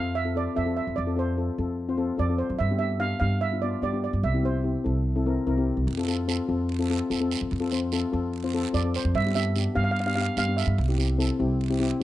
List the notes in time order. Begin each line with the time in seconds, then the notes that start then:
Already playing: F2 C4 F4 A4 F5
0.15 E5
0.25 C4 F4 A4
0.35 C4 F4 A4 D5
0.55 F2 C4 F4 A4 E5
0.66 C4 F4 A4
0.77 E5
0.87 F2
0.96 F2 D5
1.07 C4 F4 A4
1.16 C4 F4 A4 C5
1.37 C4 F4 A4
1.58 F2 C4 F4 A4
1.89 C4 F4 C5
1.98 C4 F4 A4
2.17 F2 C4 F4 A4 D5
2.29 C4 F4 A4
2.38 C5
2.50 F#2
2.59 G2 E5
2.71 B3 D4 G4
2.79 B3 D4 G4 E5
3.00 B3 D4 G4 F5
3.20 G2 B3 D4 G4 F5
3.41 E5
3.52 B3 D4 F4
3.62 B3 D4 F4 D5
3.82 G2 B3 D4 G4 D5
3.93 B3 D4 G4
4.04 D5
4.13 G2
4.23 C2 E5
4.34 C4 E4 G4
4.43 C4 E4 G4 C5
4.64 C4 E4 G4
4.84 C2 C4 E4 A4
5.16 C4 E4 A4
5.26 C4 E4 A#4
5.47 C2 C4 E4 A#4
5.57 C4 E4 G4
5.77 C2
5.87 F2, long guiro
5.97 C4 F4 A4
6.08 C4 F4 A4, short guiro
6.28 C4 F4 A4, short guiro
6.48 F2 C4 F4 A4
6.69 long guiro
6.79 C4 F4 A4
6.90 C4 F4 A4
7.10 F2 C4 F4 A4, short guiro
7.20 C4 F4 A4
7.31 short guiro
7.41 F2
7.51 F2, long guiro
7.60 C4 F4 A4
7.72 C4 F4 C5, short guiro
7.92 C4 F4 A4, short guiro
8.12 F2 C4 F4 A4
8.33 long guiro
8.44 C4 F4 C5
8.54 C4 F4 A4
8.73 F2 C4 F4 A4 D5, short guiro
8.84 C4 F4 A4
8.94 C5, short guiro
9.05 F2
9.14 G2 E5, long guiro
9.25 B3 D4 G4
9.35 B3 D4 G4 E5, short guiro
9.56 B3 D4 G4, short guiro
9.75 G2 B3 D4 G4 F5
9.84 F5
9.91 F5
9.96 F5, long guiro
10.06 B3 D4 G4 F5
10.15 B3 D4 G4 F5
10.21 F5
10.37 G2 B3 D4 G4 F5, short guiro
10.48 B3 D4 G4
10.57 E5, short guiro
10.67 G2
10.78 C2, long guiro
10.88 C4 E4 G4
10.98 C4 E4 G4, short guiro
11.18 C4 E4 A4, short guiro
11.39 C2 C4 E4 G4
11.61 long guiro
11.70 C4 E4 G4
11.80 C4 E4 G4